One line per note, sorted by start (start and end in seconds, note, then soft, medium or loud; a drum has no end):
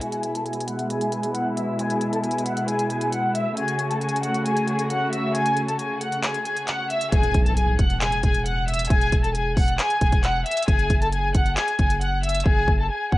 0.01 3.53 B2 medium
0.01 3.53 G#3 medium
0.01 3.53 E4 medium
0.01 0.33 G#4 medium
0.01 0.33 G#5 loud
0.01 closed hi-hat medium
0.12 closed hi-hat medium
0.23 closed hi-hat medium
0.35 0.45 A4 medium
0.35 0.45 A5 medium
0.35 closed hi-hat medium
0.46 0.66 G#4 medium
0.46 0.66 G#5 medium
0.46 closed hi-hat soft
0.53 closed hi-hat medium
0.61 closed hi-hat medium
0.68 0.88 F#5 medium
0.68 0.89 F#6 medium
0.68 closed hi-hat medium
0.79 closed hi-hat medium
0.90 1.11 G#4 medium
0.90 1.10 G#5 medium
0.90 closed hi-hat medium
1.01 closed hi-hat medium
1.12 1.33 G#4 medium
1.12 1.33 G#5 medium
1.12 closed hi-hat medium
1.23 closed hi-hat medium
1.35 1.55 F#5 medium
1.35 1.55 F#6 medium
1.35 closed hi-hat medium
1.57 1.77 E5 medium
1.57 1.77 E6 medium
1.57 closed hi-hat medium
1.79 2.11 G#4 medium
1.79 2.11 G#5 loud
1.79 closed hi-hat medium
1.90 closed hi-hat medium
2.01 closed hi-hat medium
2.13 2.23 A4 medium
2.13 2.23 A5 medium
2.13 closed hi-hat medium
2.24 2.44 G#4 medium
2.24 2.44 G#5 medium
2.24 closed hi-hat soft
2.31 closed hi-hat medium
2.38 closed hi-hat medium
2.46 2.66 F#5 medium
2.46 2.66 F#6 medium
2.46 closed hi-hat medium
2.57 closed hi-hat medium
2.68 2.89 G#4 medium
2.68 2.88 G#5 loud
2.68 closed hi-hat medium
2.79 closed hi-hat medium
2.90 3.11 G#4 medium
2.90 3.10 G#5 medium
2.90 closed hi-hat medium
3.01 closed hi-hat medium
3.12 3.33 F#5 medium
3.12 3.33 F#6 medium
3.12 closed hi-hat medium
3.35 3.55 E5 medium
3.35 3.55 E6 medium
3.35 closed hi-hat medium
3.57 7.09 C#3 medium
3.57 7.09 A3 medium
3.57 7.09 F#4 medium
3.57 3.89 G#4 medium
3.57 3.88 G#5 loud
3.57 closed hi-hat medium
3.68 closed hi-hat medium
3.79 closed hi-hat medium
3.90 4.01 A4 medium
3.90 4.00 A5 medium
3.90 closed hi-hat medium
4.01 4.22 G#4 medium
4.01 4.21 G#5 medium
4.01 closed hi-hat soft
4.09 closed hi-hat medium
4.16 closed hi-hat medium
4.23 4.44 F#5 medium
4.23 4.44 F#6 medium
4.23 closed hi-hat medium
4.34 closed hi-hat medium
4.46 4.66 G#4 medium
4.46 4.66 G#5 medium
4.46 closed hi-hat medium
4.57 closed hi-hat medium
4.68 4.89 G#4 medium
4.68 4.88 G#5 medium
4.68 closed hi-hat medium
4.79 closed hi-hat medium
4.90 5.10 F#5 medium
4.90 5.11 F#6 medium
4.90 closed hi-hat medium
5.12 5.33 E5 medium
5.12 5.33 E6 medium
5.12 closed hi-hat medium
5.35 5.66 G#4 medium
5.35 5.66 G#5 loud
5.35 closed hi-hat medium
5.46 closed hi-hat medium
5.57 closed hi-hat medium
5.68 5.79 A4 medium
5.68 5.78 A5 medium
5.68 closed hi-hat medium
5.79 6.00 G#4 medium
5.79 5.99 G#5 medium
5.79 closed hi-hat medium
6.01 6.22 F#5 medium
6.01 6.22 F#6 medium
6.01 closed hi-hat medium
6.12 closed hi-hat medium
6.23 6.44 G#4 medium
6.23 6.44 G#5 medium
6.23 clap loud
6.23 closed hi-hat medium
6.34 closed hi-hat medium
6.45 6.66 G#4 medium
6.45 6.66 G#5 medium
6.45 closed hi-hat medium
6.57 closed hi-hat medium
6.68 6.88 F#5 medium
6.68 6.89 F#6 medium
6.68 clap medium
6.68 closed hi-hat medium
6.90 7.10 E5 medium
6.90 7.11 E6 medium
6.90 closed hi-hat medium
7.01 closed hi-hat loud
7.12 7.34 E1 loud
7.12 7.44 G#4 medium
7.12 7.44 G#5 loud
7.12 kick loud
7.12 closed hi-hat medium
7.12 impact medium
7.23 closed hi-hat medium
7.34 7.77 B1 loud
7.34 kick medium
7.34 closed hi-hat medium
7.46 7.56 A4 medium
7.46 7.56 A5 medium
7.46 closed hi-hat medium
7.57 7.77 G#4 medium
7.57 7.77 G#5 medium
7.57 closed hi-hat medium
7.79 8.22 E1 loud
7.79 7.99 F#5 medium
7.79 8.00 F#6 medium
7.79 kick loud
7.79 closed hi-hat medium
7.90 closed hi-hat medium
8.01 8.22 G#4 medium
8.01 8.22 G#5 loud
8.01 clap loud
8.01 closed hi-hat medium
8.12 closed hi-hat medium
8.23 8.88 E1 loud
8.23 8.44 G#4 medium
8.23 8.44 G#5 medium
8.23 kick medium
8.23 closed hi-hat medium
8.34 closed hi-hat medium
8.46 8.66 F#5 medium
8.46 8.66 F#6 medium
8.46 closed hi-hat medium
8.68 8.88 E5 medium
8.68 8.89 E6 medium
8.68 closed hi-hat medium
8.74 closed hi-hat medium
8.79 closed hi-hat medium
8.85 closed hi-hat medium
8.90 9.12 E1 loud
8.90 9.22 G#4 medium
8.90 9.21 G#5 loud
8.90 kick loud
8.90 closed hi-hat medium
9.01 closed hi-hat medium
9.12 9.55 E1 loud
9.12 kick medium
9.12 closed hi-hat medium
9.23 9.34 A4 medium
9.23 9.34 A5 medium
9.23 closed hi-hat medium
9.35 9.55 G#4 medium
9.35 9.55 G#5 medium
9.35 closed hi-hat medium
9.57 9.78 E1 loud
9.57 9.77 F#5 medium
9.57 9.77 F#6 medium
9.57 kick loud
9.57 open hi-hat medium
9.68 closed hi-hat medium
9.79 10.00 G#4 medium
9.79 9.99 G#5 loud
9.79 clap loud
9.79 closed hi-hat medium
9.90 closed hi-hat medium
10.01 10.44 E1 loud
10.01 10.22 G#4 medium
10.01 10.21 G#5 medium
10.01 kick medium
10.01 closed hi-hat medium
10.12 kick medium
10.12 closed hi-hat medium
10.23 10.44 F#5 medium
10.23 10.44 F#6 medium
10.23 clap medium
10.23 closed hi-hat medium
10.46 10.66 E5 medium
10.46 10.66 E6 medium
10.46 closed hi-hat medium
10.51 closed hi-hat medium
10.57 closed hi-hat medium
10.62 closed hi-hat medium
10.68 10.89 F#1 loud
10.68 11.00 G#4 medium
10.68 10.99 G#5 loud
10.68 kick loud
10.68 closed hi-hat medium
10.79 closed hi-hat medium
10.90 11.33 F#1 loud
10.90 kick medium
10.90 closed hi-hat medium
11.01 11.12 A4 medium
11.01 11.11 A5 medium
11.01 closed hi-hat medium
11.12 11.33 G#4 medium
11.12 11.33 G#5 medium
11.12 closed hi-hat medium
11.34 11.56 F#1 loud
11.34 11.55 F#5 medium
11.34 11.55 F#6 medium
11.34 kick loud
11.34 closed hi-hat medium
11.46 closed hi-hat medium
11.57 11.78 G#4 medium
11.57 11.77 G#5 loud
11.57 clap loud
11.57 closed hi-hat medium
11.68 closed hi-hat medium
11.79 12.43 F#1 loud
11.79 12.00 G#4 medium
11.79 11.99 G#5 medium
11.79 kick medium
11.79 closed hi-hat medium
11.90 closed hi-hat medium
12.01 12.22 F#5 medium
12.01 12.22 F#6 medium
12.01 closed hi-hat medium
12.23 12.44 E5 medium
12.23 12.44 E6 medium
12.23 closed hi-hat medium
12.29 closed hi-hat medium
12.35 closed hi-hat medium
12.40 closed hi-hat medium
12.46 12.67 F#1 loud
12.46 12.77 G#4 medium
12.46 12.77 G#5 loud
12.46 kick loud
12.68 12.89 F#1 loud
12.68 kick medium
12.79 12.90 A4 medium
12.79 12.89 A5 medium
12.90 13.11 G#4 medium
12.90 13.10 G#5 medium
13.12 13.18 F#1 loud
13.12 13.18 F#5 medium
13.12 13.18 F#6 medium
13.12 kick loud